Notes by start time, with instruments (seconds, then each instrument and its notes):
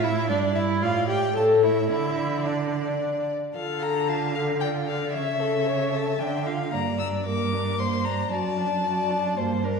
Already playing: cello A2, violin E5
0.03 viola E4, violin E5
0.29 cello G2, viola D4, violin D5
0.55 viola E4, violin E5
0.82 cello A2, viola F4, violin D5 F5
1.09 viola G4, violin G5
1.36 cello A2, viola A4, violin C#5 A5
1.63 viola E4, violin E5
1.90 cello D3, viola E4, violin D5 E5
2.45 viola D4, violin D5
3.54 cello D3, viola F4, violin A4 F5
3.82 viola A4, violin A#5
4.09 viola F4, violin F5 A5
4.35 viola A4, violin F5
4.60 viola F4, violin D5 G5
4.88 viola A4, violin F5
5.13 cello C#3, viola C#5, violin E5
5.40 viola A4, violin A4
5.66 viola C#5, violin C#5
5.93 viola A4, violin A5
6.20 cello D3, viola D4, violin G5
6.46 viola F4, violin F5
6.73 cello G2, viola A#3, violin D5 A#5
6.99 viola D4, violin E6
7.26 viola A#3, violin A#4 D6
7.53 viola D4
7.79 viola A#3, violin C5 C6
8.05 viola D4, violin A#5
8.31 cello F#2, viola F#4, violin D5 A5
8.58 viola D4
8.84 viola F#4, violin D5
9.11 viola D4
9.37 cello G2, viola A#3, violin C5
9.64 viola D4, violin A#4